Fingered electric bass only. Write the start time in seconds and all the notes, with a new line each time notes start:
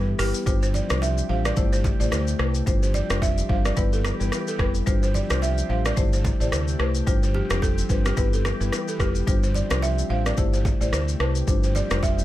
Already playing: G2
0.19 G1
0.47 G1
0.90 C2
1.30 A1
1.57 G1
2.01 A1
2.12 D2
2.39 C2
2.67 G1
3.10 F1
3.49 G1
3.77 G1
4.21 G1
4.59 F1
4.87 G1
5.31 C2
5.70 A1
5.97 G1
6.41 A1
6.52 D2
6.79 C2
7.07 G1
7.51 F1
7.90 G1
8.17 G1
8.61 G1
9.00 F1
9.27 G1
9.71 C2
10.10 A1
10.38 G1
10.81 A1
10.92 D2
11.20 C2
11.48 G1
11.91 F1